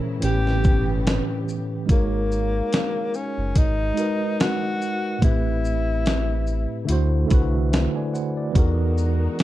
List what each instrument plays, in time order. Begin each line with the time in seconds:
Already playing: tine electric piano A#2 E3 C#4 G#4 A#4 C5 C#5, string section C#3 G#3 E4 A#4
0.19 sub bass A1, tine electric piano A2 E3 C#4, string section C#3 A3 B3 G4, closed hi-hat
0.25 tenor saxophone G4, tine electric piano G4 B4
0.47 snare
0.64 sub bass G1, kick, shaker
1.07 snare, closed hi-hat
1.49 shaker
1.86 sub bass G#1, tine electric piano G#3 D#4 F#4, kick, closed hi-hat
1.90 tenor saxophone A#3, tine electric piano G#4 A#4 C#5
2.32 shaker
2.73 snare, closed hi-hat
3.14 tenor saxophone C#4, shaker
3.38 sub bass F#1
3.56 sub bass G#1, tenor saxophone D#4, kick, closed hi-hat
3.94 tine electric piano G#3 D#4 F#4, closed hi-hat, shaker
3.98 tine electric piano A#4 B4 D#5
4.40 tenor saxophone F#4, snare, closed hi-hat
4.82 shaker
5.18 sub bass A1, tine electric piano A2 A3 C4, kick, closed hi-hat
5.24 tenor saxophone E4, tine electric piano G4 B4
5.65 shaker
6.06 snare, closed hi-hat
6.47 shaker
6.85 tine electric piano D3 A3 E4, closed hi-hat
6.89 sub bass D2, tine electric piano F#4 C5
7.27 tine electric piano D3 A3 E4, closed hi-hat, shaker
7.31 sub bass C2, tine electric piano F#4 B4, kick
7.72 tine electric piano B4 E5, snare, closed hi-hat
7.96 tine electric piano D5 G#5
8.14 tine electric piano C5 F#5, shaker
8.37 tine electric piano A4 D5
8.52 sub bass E2, tine electric piano E3 B3 D#4, string section G#3 D#4, kick
8.56 string section F#4 A#4, tine electric piano F#4 G#4 A#4, closed hi-hat
8.98 shaker
9.39 snare, closed hi-hat